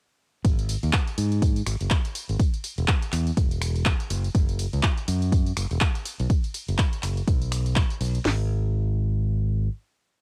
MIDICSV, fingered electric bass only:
0, 0, Header, 1, 2, 480
1, 0, Start_track
1, 0, Key_signature, 5, "minor"
1, 0, Tempo, 487805
1, 438, Time_signature, 4, 2, 24, 8
1, 10052, End_track
2, 0, Start_track
2, 0, Title_t, "Fingered electric bass"
2, 0, Program_c, 0, 33
2, 438, Note_on_c, 0, 32, 100
2, 737, Note_off_c, 0, 32, 0
2, 818, Note_on_c, 0, 39, 84
2, 882, Note_off_c, 0, 39, 0
2, 1159, Note_on_c, 0, 44, 82
2, 1580, Note_off_c, 0, 44, 0
2, 1639, Note_on_c, 0, 32, 87
2, 1727, Note_off_c, 0, 32, 0
2, 1777, Note_on_c, 0, 30, 96
2, 1842, Note_off_c, 0, 30, 0
2, 2257, Note_on_c, 0, 32, 85
2, 2322, Note_off_c, 0, 32, 0
2, 2737, Note_on_c, 0, 28, 88
2, 2802, Note_off_c, 0, 28, 0
2, 3078, Note_on_c, 0, 40, 84
2, 3245, Note_off_c, 0, 40, 0
2, 3318, Note_on_c, 0, 28, 84
2, 3857, Note_off_c, 0, 28, 0
2, 4039, Note_on_c, 0, 30, 97
2, 4206, Note_off_c, 0, 30, 0
2, 4278, Note_on_c, 0, 30, 105
2, 4577, Note_off_c, 0, 30, 0
2, 4657, Note_on_c, 0, 37, 86
2, 4722, Note_off_c, 0, 37, 0
2, 4999, Note_on_c, 0, 42, 81
2, 5420, Note_off_c, 0, 42, 0
2, 5479, Note_on_c, 0, 30, 87
2, 5567, Note_off_c, 0, 30, 0
2, 5617, Note_on_c, 0, 28, 98
2, 5682, Note_off_c, 0, 28, 0
2, 6097, Note_on_c, 0, 35, 90
2, 6162, Note_off_c, 0, 35, 0
2, 6577, Note_on_c, 0, 30, 86
2, 6642, Note_off_c, 0, 30, 0
2, 6918, Note_on_c, 0, 30, 83
2, 7085, Note_off_c, 0, 30, 0
2, 7158, Note_on_c, 0, 35, 81
2, 7697, Note_off_c, 0, 35, 0
2, 7878, Note_on_c, 0, 35, 96
2, 8045, Note_off_c, 0, 35, 0
2, 8118, Note_on_c, 0, 32, 95
2, 9519, Note_off_c, 0, 32, 0
2, 10052, End_track
0, 0, End_of_file